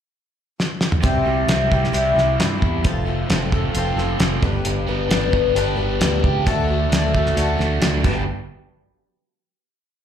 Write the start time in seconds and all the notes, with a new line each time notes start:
0.60 snare
0.81 snare
0.92 mid tom
1.02 C2 C3 G3 C4 E4 G4, kick, closed hi-hat
1.25 C2 G3 C4 E4 G4
1.48 C2 G3 C4 E4 G4, snare, closed hi-hat
1.70 C2 G3 C4 E4 G4, kick
1.84 snare
1.93 C2 C3 G3 C4 E4 G4, closed hi-hat
2.15 C2 G3 C4 E4 G4, snare
2.37 G2 C4, snare, closed hi-hat
2.60 E2 E4, kick
2.82 F1 F2 F3 C4 F4 A4, kick, closed hi-hat
3.06 A3 C4 F4 A4
3.28 F1 F3 C4, snare, closed hi-hat
3.32 F4 A4
3.51 A3 C4 F4 A4, kick
3.73 F1 F3 C4 F4 A4, closed hi-hat
3.96 F1 A3 F4 A4, snare
4.00 C4
4.18 F1 C4, snare, closed hi-hat
4.42 G1 G2 D3 G3 B3 D4 B4, kick
4.64 G1 G2, closed hi-hat
4.87 G1 G3 B3 D4 B4
5.09 G1 G3 B3 D4 B4, snare, closed hi-hat
5.32 G1 B3, kick
5.55 G1 G2 D3 G3 B3 D4 G4 B4, closed hi-hat
5.76 G1 G3 B3 D4 B4
6.00 D2 D4, snare, closed hi-hat
6.23 C#2 G4, kick
6.45 D2 D3 A3 D4 F#4 A4, kick, closed hi-hat
6.68 A3 D4 F#4 A4
6.89 D2 A3 D4, snare, closed hi-hat
6.94 D4 F#4 A4
7.14 A3 D4 F#4 A4, kick
7.26 snare
7.35 D2 D3 A3 D4 F#4 A4, closed hi-hat
7.58 D2 A3 D4 F#4 A4, snare
7.80 D2 D4, snare, closed hi-hat
8.02 G1 G2 D3 G3 B3 D4 G4 B4, kick, crash